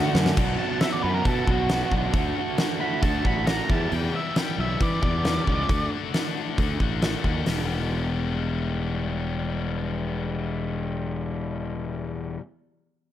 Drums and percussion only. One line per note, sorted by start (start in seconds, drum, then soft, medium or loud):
0.15 snare medium
0.26 snare loud
0.37 kick medium
0.37 crash medium
0.81 snare loud
0.81 open hi-hat soft
1.25 kick medium
1.25 open hi-hat soft
1.47 kick medium
1.69 snare loud
1.69 open hi-hat soft
1.92 kick medium
2.14 kick medium
2.14 open hi-hat soft
2.58 snare loud
2.58 open hi-hat soft
3.03 kick medium
3.03 open hi-hat soft
3.25 kick medium
3.47 snare loud
3.47 open hi-hat medium
3.70 kick medium
3.92 open hi-hat soft
4.36 snare loud
4.36 open hi-hat soft
4.80 kick medium
4.80 open hi-hat soft
5.03 kick medium
5.25 snare medium
5.25 open hi-hat soft
5.47 kick medium
5.69 kick medium
5.69 open hi-hat soft
6.14 snare medium
6.14 open hi-hat soft
6.58 kick medium
6.58 open hi-hat soft
6.80 kick medium
7.02 snare medium
7.02 open hi-hat soft
7.24 kick medium
7.46 snare medium
7.46 open hi-hat medium